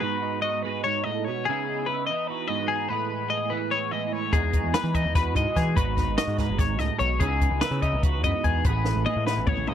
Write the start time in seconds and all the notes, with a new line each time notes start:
0.00 G#2 B3 D#4 F#4 B4
0.22 D#4
0.42 F#4 D#5
0.63 G#3 D#4 B4
0.84 G#2 C#5
1.04 A2 D#5
1.25 B2 C#5
1.45 C#3 B3 G#4
1.49 D#4 E4
1.69 D#4
1.86 E4 B4
2.07 E3 D#5
2.11 D#4
2.27 F#4 B4
2.48 G#2 B3 D#5
2.68 D#4 G#4
2.89 A2 G#3 B3 B4
2.93 G#4
3.11 B3
3.30 G#4 D#5
3.50 E3 B3 B4
3.71 G#4 C#5
3.92 E3 G#3 D#5
4.13 B3 C#5
4.33 E2 G#3 D#4 F#4 G#4, kick, closed hi-hat
4.53 D#4, kick, closed hi-hat
4.64 E2
4.74 G#4 B4, snare, closed hi-hat
4.84 E3
4.94 E3 D#4 D#5, kick, closed hi-hat
5.05 E2
5.15 F#4 B4, kick, snare, closed hi-hat
5.35 G#2 B2 G#3 D#5, kick, closed hi-hat
5.56 E3 D#4 G#4, kick, snare, closed hi-hat
5.75 G#1 G#2 B3 D#4 F#4 B4, kick, closed hi-hat
5.96 D#4, kick, snare, closed hi-hat
6.07 G#1
6.17 F#4 D#5, snare, closed hi-hat
6.27 G#2
6.38 G#3 D#4 B4, kick, snare, closed hi-hat
6.49 G#1
6.58 G#2 C#5, kick, snare, closed hi-hat
6.79 C#2 A2 D#5, snare, closed hi-hat
6.99 B1 B2 C#5, closed hi-hat
7.20 C#2 C#3 B3 D#4 E4 G#4, kick, closed hi-hat
7.41 D#4, kick, closed hi-hat
7.51 C#2
7.61 E4 B4, snare, closed hi-hat
7.71 C#3
7.82 E3 D#4 D#5, kick, closed hi-hat
7.93 C#2
8.03 F#4 B4, kick, closed hi-hat
8.24 F#2 G#2 B3 D#5, kick, closed hi-hat
8.44 E2 D#4 G#4, kick, closed hi-hat
8.64 A1 A2 G#3 B4, kick, closed hi-hat
8.68 B3 G#4
8.85 B3, snare
8.96 A1
9.06 G#4 D#5, high tom
9.16 A2
9.27 E3 B3 B4, snare
9.37 A1
9.47 C#5, kick, mid tom
9.53 G#4
9.57 mid tom
9.67 C#2 E3 D#5, mid tom